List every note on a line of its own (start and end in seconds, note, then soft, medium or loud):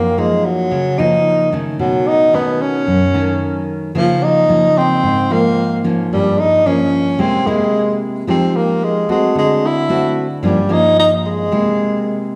0.00 0.68 F#2 medium
0.00 0.12 F3 medium
0.00 0.12 A#3 soft
0.00 0.20 A#3 medium
0.00 0.12 D#4 medium
0.18 0.71 F3 medium
0.18 0.47 G#3 medium
0.18 0.71 A#3 soft
0.18 0.71 D#4 medium
0.45 1.00 F#3 medium
0.71 1.76 C#3 medium
0.98 1.48 F3 medium
0.98 1.48 A#3 medium
0.98 1.52 D#4 loud
0.98 1.48 D#4 medium
1.52 2.29 D#3 medium
1.52 2.29 A3 medium
1.52 2.29 C#4 medium
1.79 2.84 B2 medium
1.79 2.09 F#3 medium
2.08 2.37 D#4 medium
2.33 2.87 D#3 medium
2.33 2.87 A3 medium
2.33 2.63 B3 medium
2.33 2.87 C#4 medium
2.61 3.69 C#4 medium
2.87 3.92 F#2 medium
3.14 3.91 D#3 medium
3.14 3.91 A3 medium
3.14 3.91 C#4 medium
3.95 5.00 C#3 medium
3.95 4.45 F3 medium
3.95 4.25 F3 medium
3.95 4.45 A#3 soft
3.95 4.45 D#4 medium
4.24 4.79 D#4 loud
4.49 5.03 F3 soft
4.49 5.03 A#3 medium
4.49 5.03 D#4 medium
4.78 5.34 C4 medium
5.03 6.08 G#2 medium
5.30 5.80 F3 soft
5.30 5.80 A#3 medium
5.30 5.85 A#3 medium
5.30 5.80 D#4 medium
5.84 6.61 F3 medium
5.84 6.61 A#3 medium
5.84 6.61 C#4 medium
6.13 7.17 G2 medium
6.13 6.41 G3 medium
6.39 6.68 D#4 medium
6.66 7.18 F3 soft
6.66 7.18 A#3 medium
6.66 7.22 C#4 medium
6.66 7.18 C#4 medium
7.19 8.24 C3 medium
7.19 7.42 G#3 medium
7.19 7.42 A#3 soft
7.19 7.48 C4 medium
7.19 7.42 E4 medium
7.47 8.00 G#3 medium
7.47 8.23 G#3 medium
7.47 8.23 A#3 medium
7.47 8.24 E4 medium
8.27 9.09 F3 medium
8.27 9.04 G#3 medium
8.27 8.58 C4 medium
8.27 9.04 D#4 medium
8.27 9.04 G4 medium
8.56 8.85 A#3 medium
8.83 9.09 G#3 medium
9.09 9.35 G#3 medium
9.09 9.85 A3 medium
9.09 9.85 C4 medium
9.09 9.86 F#4 medium
9.35 10.41 D3 medium
9.35 9.68 G#3 medium
9.66 10.18 E4 medium
9.89 10.25 A3 medium
9.89 10.26 C4 medium
9.89 10.26 F#4 medium
10.43 11.48 G2 medium
10.43 10.59 F3 soft
10.43 10.75 G3 medium
10.43 10.59 A#3 soft
10.43 10.59 C#4 medium
10.69 11.46 F3 medium
10.69 11.47 A#3 medium
10.69 11.47 C#4 medium
10.69 10.99 D#4 medium
10.99 11.11 D#4 medium
11.26 12.29 G#3 medium
11.52 12.36 C3 medium
11.52 12.36 G#3 medium
11.52 12.36 A#3 soft
11.52 12.36 E4 soft